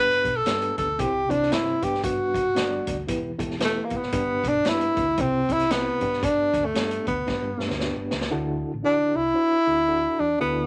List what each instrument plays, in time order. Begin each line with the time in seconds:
Already playing: fingered electric bass G1, reed electric piano G2 B3 D4 G4 B4, tenor saxophone B4
0.10 snare
0.25 fingered electric bass B1, kick, closed hi-hat
0.37 tenor saxophone A4
0.46 fingered electric bass G2, reed electric piano B3 D4 G4 B4, snare, closed hi-hat
0.62 closed hi-hat
0.78 fingered electric bass D2, tenor saxophone A4, kick, closed hi-hat
0.98 fingered electric bass C2, reed electric piano C3 C4 E4 G4 C5, tenor saxophone G4, kick, closed hi-hat
1.29 fingered electric bass C2, reed electric piano C4 E4 G4 C5, tenor saxophone D4, kick, closed hi-hat
1.43 snare
1.50 fingered electric bass G1, reed electric piano C4 E4 G4 C5, tenor saxophone E4, snare, closed hi-hat
1.82 fingered electric bass G1, reed electric piano G2 G3 B3 D4 B4, tenor saxophone G4, kick, closed hi-hat
1.94 snare
2.04 tenor saxophone F#4, kick, closed hi-hat
2.34 fingered electric bass F#1, kick, closed hi-hat
2.55 fingered electric bass G1, reed electric piano G3 B3 D4 D5, snare, closed hi-hat
2.87 fingered electric bass D2, kick, closed hi-hat
3.07 fingered electric bass E1, reed electric piano E3 B3 E4 G4 B4, kick, closed hi-hat
3.38 fingered electric bass E1, reed electric piano B3 E4 G4 A4, kick, closed hi-hat
3.51 snare
3.59 reed electric piano B3 E4 G4 B4, snare, closed hi-hat
3.64 tenor saxophone A3
3.84 tenor saxophone A#3
3.90 fingered electric bass F#1, kick, closed hi-hat
3.97 tenor saxophone B3
4.03 snare
4.12 fingered electric bass G1, reed electric piano G2 B3 D4 G4 B4, kick, closed hi-hat
4.44 fingered electric bass B1, kick, closed hi-hat
4.48 tenor saxophone D4
4.64 fingered electric bass G2, reed electric piano B3 D4 G4 B4, snare, closed hi-hat
4.69 tenor saxophone E4
4.81 closed hi-hat
4.97 fingered electric bass D2, kick, closed hi-hat
5.17 fingered electric bass C2, reed electric piano C3 C4 E4 G4 C5, tenor saxophone C4, kick, closed hi-hat
5.49 fingered electric bass C2, reed electric piano C4 E4 G4 C5, tenor saxophone E4, kick, closed hi-hat
5.59 snare, closed hi-hat
5.70 tenor saxophone B3, reed electric piano C4 E4 G4 C5, snare, closed hi-hat
6.01 fingered electric bass G1, reed electric piano G2 B3 D4 G4 B4, kick, closed hi-hat
6.13 snare
6.23 tenor saxophone D4, kick, closed hi-hat
6.54 fingered electric bass D2, kick, closed hi-hat
6.65 tenor saxophone A3
6.74 fingered electric bass G2, reed electric piano B3 D4 G4 A4, snare, closed hi-hat
6.91 closed hi-hat
7.07 fingered electric bass D2, tenor saxophone B3, kick, closed hi-hat
7.27 fingered electric bass G1, reed electric piano G2 B3 D4 G4 B4, kick, snare
7.43 fingered electric bass G2
7.57 fingered electric bass G2, reed electric piano B3 D4 G4 B4, snare
7.70 fingered electric bass D2, snare
7.78 reed electric piano B3 D4 G4 B4, snare
7.96 fingered electric bass G1
8.11 fingered electric bass C#2, snare
8.21 snare
8.30 fingered electric bass D2, reed electric piano D3 D4 E4 F#4 A4
8.74 fingered electric bass A1
8.83 reed electric piano D4 E4 F#4 A4, tenor saxophone D4
9.00 muted fingered electric bass stroke
9.15 fingered electric bass C2, tenor saxophone E4
9.34 reed electric piano D4 E4 F#4 C5
9.52 muted fingered electric bass stroke
9.66 fingered electric bass D2, reed electric piano D4 E4 F#4 A4
9.87 reed electric piano D4 E4 F#4 A4
10.20 fingered electric bass E2, tenor saxophone D4
10.39 fingered electric bass D2, reed electric piano D3 D4 E4 F#4 A4, tenor saxophone B3